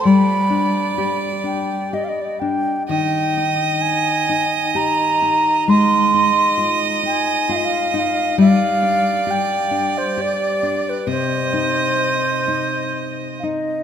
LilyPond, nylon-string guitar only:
\new Staff \with { instrumentName = "Nylon-string guitar" } { \time 3/4 \key g \phrygian \tempo 4 = 65 g8 d'8 g'8 d'8 g'8 d'8 | ees8 ees'4 ees'8 g'8 ees'8 | aes8 ees'8 f'8 ees'8 f'8 ees'8 | g8 d'8 g'8 d'8 g'8 d'8 |
c8 ees'4 ees'4 ees'8 | }